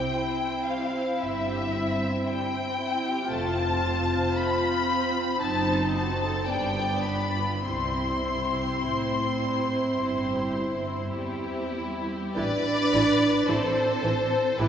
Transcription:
0.00 3.27 C4 soft
0.00 3.31 E4 soft
0.00 0.16 G4 soft
0.00 3.27 C5 soft
0.00 0.65 G5 medium
0.14 0.41 E4 soft
0.40 0.67 C4 soft
0.67 0.94 G3 soft
0.67 1.21 F5 medium
0.93 1.21 C4 soft
1.20 2.10 G1 soft
1.20 2.10 G2 soft
1.20 1.46 E4 soft
1.20 2.28 E5 medium
1.48 1.75 G4 soft
1.75 2.01 E4 soft
2.01 2.28 C4 soft
2.27 2.53 G3 soft
2.27 3.31 G5 medium
2.52 2.79 C4 soft
2.78 3.05 E4 soft
3.05 3.31 G4 soft
3.30 4.19 F1 soft
3.30 4.19 F2 soft
3.30 3.55 A3 medium
3.30 6.46 C4 soft
3.30 5.37 F4 soft
3.30 6.46 C5 soft
3.30 4.36 A5 medium
3.57 3.83 C4 soft
3.83 4.10 F4 soft
4.10 4.37 C4 soft
4.35 4.62 A3 soft
4.35 5.41 B5 medium
4.61 4.88 C4 soft
4.88 5.15 F4 soft
5.14 5.40 C4 soft
5.41 6.32 F#1 soft
5.41 6.32 F#2 medium
5.41 5.66 C4 soft
5.41 6.51 D#4 soft
5.41 5.94 A5 medium
5.68 5.96 D#4 soft
5.95 6.23 F#4 soft
5.95 6.49 A5 medium
6.23 6.51 A4 soft
6.49 7.45 G1 soft
6.49 7.45 G2 soft
6.49 6.77 G3 soft
6.49 7.64 B3 soft
6.49 7.62 D4 soft
6.49 7.64 D5 soft
6.49 7.06 G5 medium
6.79 7.07 B3 soft
7.04 7.35 D4 soft
7.04 7.63 B5 medium
7.35 7.64 F4 soft
7.63 8.62 C2 soft
7.63 8.62 C3 soft
7.63 7.91 G3 soft
7.63 12.14 C4 soft
7.63 12.10 E4 soft
7.63 11.10 C5 soft
7.63 11.13 C6 medium
7.93 8.23 C4 soft
8.23 8.52 E4 soft
8.53 8.82 G4 soft
8.82 9.93 A2 soft
8.82 9.11 E4 soft
9.11 9.40 C4 soft
9.40 9.69 G3 soft
9.68 9.97 C4 soft
9.98 10.94 G1 soft
9.98 11.14 G2 soft
9.98 10.25 E4 soft
10.27 10.55 G4 soft
10.56 10.84 E4 soft
10.85 11.14 C4 soft
11.11 12.37 E2 soft
11.11 11.44 G3 soft
11.11 12.33 G3 soft
11.11 12.31 E4 medium
11.11 12.06 G4 soft
11.44 11.75 C4 soft
11.76 12.07 E4 soft
12.08 12.37 G4 soft
12.35 12.44 A1 medium
12.35 12.44 E3 medium
12.35 13.50 D4 medium
12.35 12.44 E4 medium
12.35 13.49 B4 medium
12.35 13.50 D5 loud
12.93 13.02 A1 medium
12.93 13.02 E3 medium
12.93 13.01 E4 soft
13.48 13.57 A1 medium
13.48 13.57 E3 soft
13.48 14.60 C4 medium
13.48 13.56 E4 soft
13.48 14.59 A4 medium
13.48 14.60 C5 medium
14.04 14.12 A1 medium
14.04 14.12 E3 soft
14.04 14.12 E4 soft
14.59 14.67 A1 medium
14.59 14.68 E3 medium
14.59 14.68 B3 medium
14.59 14.68 E4 medium
14.59 14.68 G4 medium
14.59 14.68 B4 medium

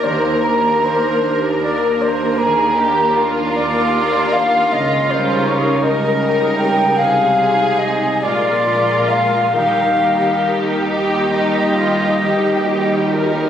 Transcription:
0.00 1.08 D#2 soft
0.00 2.40 D#3 soft
0.00 0.44 A#3 soft
0.00 1.22 A#4 soft
0.00 2.39 A#4 soft
0.00 0.42 A#4 soft
0.04 0.42 A#3 soft
0.04 0.42 D4 soft
0.04 0.45 C5 soft
0.43 1.59 A#3 soft
0.43 2.00 A#3 soft
0.43 1.59 D4 soft
0.43 1.58 A#4 soft
0.43 0.86 A#4 medium
0.84 2.78 D4 soft
0.84 1.46 C5 medium
1.21 2.25 D#2 soft
1.21 3.56 A#4 soft
1.62 2.76 A#3 soft
1.62 2.76 D4 soft
1.62 3.94 F4 soft
1.62 2.76 A#4 soft
1.62 2.03 D5 medium
2.01 3.16 A#3 soft
2.01 2.40 C5 medium
2.38 3.42 D#2 medium
2.38 3.42 D#2 soft
2.38 4.75 D#3 soft
2.38 2.76 G#4 soft
2.38 3.28 A#4 medium
2.76 3.93 A#3 soft
2.76 3.93 D4 soft
2.76 4.75 D4 soft
2.76 3.16 G4 soft
2.76 3.92 A#4 soft
3.16 4.32 A#3 soft
3.16 5.84 F4 medium
3.56 4.58 D#2 medium
3.56 5.83 A#4 soft
3.56 4.34 D5 medium
3.95 4.71 A#3 soft
3.95 4.70 D4 soft
3.95 4.75 F4 soft
3.95 4.71 A#4 soft
4.33 7.01 A#3 soft
4.33 4.74 F5 medium
4.71 5.71 C#2 medium
4.71 5.71 C#3 medium
4.71 7.02 C#3 soft
4.71 5.12 D#5 medium
5.09 6.20 G3 soft
5.09 6.58 C#4 soft
5.09 6.20 D#4 soft
5.09 6.19 A#4 soft
5.09 5.49 C5 medium
5.47 7.37 D#4 soft
5.47 5.85 C#5 medium
5.83 6.84 C#2 medium
5.83 6.84 C#3 medium
5.83 6.95 A#4 medium
5.83 7.01 A#4 soft
5.83 6.58 D#5 medium
6.21 6.97 G3 soft
6.21 6.97 D#4 soft
6.21 7.01 G4 soft
6.21 6.96 A#4 soft
6.59 7.01 C#4 soft
6.59 6.98 G5 medium
6.97 8.08 C2 medium
6.97 8.27 C3 soft
6.97 8.08 C3 medium
6.97 7.38 G#3 soft
6.97 7.38 D#4 soft
6.97 8.23 G#4 medium
6.97 7.38 G#4 soft
6.97 7.80 F5 medium
7.39 8.22 G#3 soft
7.39 8.27 D#4 soft
7.39 8.22 D#4 soft
7.39 8.22 G#4 soft
7.79 9.07 G#4 soft
7.79 8.24 D#5 medium
8.22 9.38 A#1 medium
8.22 9.58 A#2 soft
8.22 9.38 A#2 medium
8.22 8.66 G#3 soft
8.22 9.54 F4 soft
8.22 8.66 F4 soft
8.22 8.66 A#4 soft
8.22 9.10 D5 medium
8.67 9.53 G#3 soft
8.67 9.58 F4 soft
8.67 9.54 F4 soft
8.67 9.52 A#4 soft
9.08 9.57 G#4 soft
9.08 10.86 A#4 soft
9.08 9.54 F5 medium
9.53 10.71 D#2 soft
9.53 12.21 D#3 soft
9.53 10.72 D#3 medium
9.53 9.98 G3 soft
9.53 9.99 D#4 soft
9.53 13.49 G4 soft
9.53 9.97 A#4 soft
9.53 10.55 F5 medium
9.99 11.30 G3 soft
9.99 11.77 A#3 soft
9.99 11.30 D#4 soft
9.99 10.77 A#4 soft
10.43 12.67 D#4 soft
10.87 12.06 D#2 soft
10.87 12.06 D#3 soft
10.87 11.29 G4 soft
10.87 13.49 A#4 soft
10.87 13.49 D#5 medium
11.31 12.65 G3 soft
11.31 11.76 D#4 soft
11.31 12.65 D#4 soft
11.31 13.49 G4 soft
11.76 13.11 A#3 soft
11.76 12.20 F4 soft
12.21 13.40 D#2 soft
12.21 13.49 D#3 soft
12.21 13.41 D#3 soft
12.21 13.10 G4 soft
12.68 13.49 G3 soft
12.68 13.49 D#4 soft
13.12 13.49 A#3 soft
13.12 13.49 A#4 medium

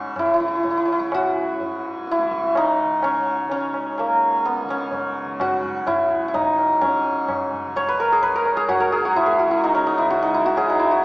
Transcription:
0.00 1.02 C#2 medium
0.00 1.63 G#2 medium
0.00 0.43 C#3 medium
0.00 0.94 B3 medium
0.00 3.04 C#4 medium
0.00 0.25 D#4 medium
0.00 1.01 F#4 medium
0.16 0.25 E4 medium
0.16 tabla na medium
0.16 tabla ge medium
0.26 0.33 E4 medium
0.34 0.40 E4 medium
0.40 2.23 C#3 medium
0.40 0.48 E4 medium
0.40 tabla te medium
0.48 0.55 E4 medium
0.55 0.63 E4 medium
0.63 0.70 E4 medium
0.63 tabla tin medium
0.63 tabla ge medium
0.71 0.77 E4 medium
0.77 0.85 E4 medium
0.85 0.92 E4 medium
0.85 tabla na medium
0.92 0.99 E4 medium
0.99 3.44 C#2 medium
0.99 2.11 E4 medium
0.99 tabla ke medium
1.12 4.40 F#4 medium
1.12 tabla na medium
1.12 tabla ge medium
1.60 4.04 G#2 medium
1.60 tabla tin medium
1.60 tabla ge medium
2.07 tabla te medium
2.11 2.63 E4 medium
2.19 tabla te medium
2.23 2.84 C#3 medium
2.31 tabla ke medium
2.43 tabla te medium
2.55 5.93 D#4 medium
2.55 tabla na medium
2.84 4.64 C#3 medium
3.03 3.51 C#4 medium
3.03 tabla na medium
3.45 5.86 C#2 medium
3.50 4.70 C#4 medium
3.50 tabla tin medium
3.74 tabla na medium
3.98 4.52 A#3 medium
3.98 tabla na medium
4.04 6.46 G#2 medium
4.45 8.06 B3 medium
4.45 tabla te medium
4.57 tabla te medium
4.64 5.25 C#3 medium
4.69 6.81 C#4 medium
4.69 tabla ke medium
4.80 tabla te medium
4.91 tabla tin medium
4.91 tabla ge medium
5.25 7.06 C#3 medium
5.40 8.66 F#4 medium
5.40 tabla na medium
5.40 tabla ge medium
5.63 tabla ge medium
5.86 8.25 C#2 medium
5.86 6.28 E4 medium
5.86 tabla na medium
5.86 tabla ge medium
6.28 6.40 E4 medium
6.34 9.22 D#4 medium
6.34 tabla tin medium
6.34 tabla ge medium
6.46 8.86 G#2 medium
6.58 tabla na medium
6.81 9.74 C#4 medium
6.81 tabla tin loud
6.81 tabla ge medium
7.06 7.66 C#3 medium
7.29 tabla na medium
7.29 tabla ge medium
7.52 tabla ge medium
7.66 9.45 C#3 medium
7.76 10.32 C#5 medium
7.76 tabla na medium
7.76 tabla ge medium
7.88 8.06 B4 medium
8.00 8.29 A#4 medium
8.12 8.56 G#4 medium
8.22 10.63 C#2 medium
8.22 8.42 B4 medium
8.22 tabla tin medium
8.22 tabla ge medium
8.36 8.80 A#4 medium
8.46 tabla na medium
8.57 8.92 G#4 medium
8.57 tabla ke medium
8.69 9.05 F#4 loud
8.69 tabla na medium
8.69 tabla ge medium
8.80 11.05 A#4 medium
8.86 11.05 G#2 medium
8.92 9.26 G#4 medium
9.05 9.38 F#4 medium
9.16 9.51 E4 medium
9.16 tabla tin medium
9.16 tabla ge medium
9.26 10.57 G#4 medium
9.39 9.47 F#4 medium
9.45 10.04 C#3 medium
9.45 10.10 F#4 medium
9.51 9.70 E4 medium
9.64 9.86 D#4 medium
9.64 tabla te medium
9.75 11.05 C#4 medium
9.75 tabla te medium
9.87 10.04 D#4 medium
9.87 tabla ke medium
9.98 10.29 E4 medium
9.98 tabla te medium
10.04 11.05 C#3 medium
10.10 10.45 F#4 medium
10.10 tabla te medium
10.22 10.40 D#4 medium
10.22 tabla te medium
10.34 10.75 E4 medium
10.34 tabla ke medium
10.46 10.91 F#4 medium
10.46 tabla te medium
10.57 11.03 G#4 medium
10.57 tabla na medium
10.63 11.05 C#2 medium
10.69 10.85 D#4 medium
10.79 11.05 E4 medium
10.91 11.05 F#4 medium

